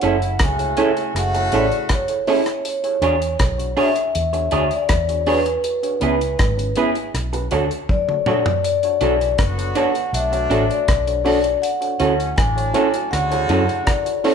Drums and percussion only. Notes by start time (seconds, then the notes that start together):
0.01 closed hi-hat
0.22 closed hi-hat
0.39 kick, cross-stick, closed hi-hat
0.59 closed hi-hat
0.77 closed hi-hat
0.97 closed hi-hat
1.16 cross-stick, closed hi-hat
1.35 closed hi-hat
1.52 closed hi-hat
1.72 closed hi-hat
1.89 kick, cross-stick, closed hi-hat
2.08 closed hi-hat
2.27 open hi-hat
2.46 cross-stick, closed hi-hat
2.65 closed hi-hat
2.84 closed hi-hat
3.02 closed hi-hat
3.22 closed hi-hat
3.39 kick, cross-stick, closed hi-hat
3.59 closed hi-hat
3.77 open hi-hat
3.96 closed hi-hat
4.15 closed hi-hat
4.34 closed hi-hat
4.51 closed hi-hat
4.71 closed hi-hat
4.89 kick, cross-stick, closed hi-hat
5.09 closed hi-hat
5.26 open hi-hat
5.46 closed hi-hat
5.64 closed hi-hat
5.83 closed hi-hat
6.01 closed hi-hat
6.21 closed hi-hat
6.39 kick, cross-stick, closed hi-hat
6.59 closed hi-hat
6.76 closed hi-hat
6.95 closed hi-hat
7.15 cross-stick, closed hi-hat
7.33 closed hi-hat
7.51 closed hi-hat
7.71 closed hi-hat
7.89 kick, high tom
8.09 mid tom
8.26 mid tom
8.46 floor tom
8.64 closed hi-hat
8.83 closed hi-hat
9.01 closed hi-hat
9.21 closed hi-hat
9.38 kick, cross-stick, closed hi-hat
9.59 closed hi-hat
9.75 closed hi-hat
9.95 closed hi-hat
10.14 closed hi-hat
10.33 closed hi-hat
10.51 closed hi-hat
10.71 closed hi-hat
10.88 kick, cross-stick, closed hi-hat
11.07 closed hi-hat
11.26 open hi-hat
11.44 closed hi-hat
11.63 closed hi-hat
11.82 closed hi-hat
12.00 closed hi-hat
12.20 closed hi-hat
12.38 kick, cross-stick, closed hi-hat
12.58 closed hi-hat
12.74 closed hi-hat
12.94 closed hi-hat
13.13 cross-stick, closed hi-hat
13.32 closed hi-hat
13.49 closed hi-hat
13.69 closed hi-hat
13.87 kick, cross-stick, closed hi-hat
14.06 closed hi-hat
14.24 open hi-hat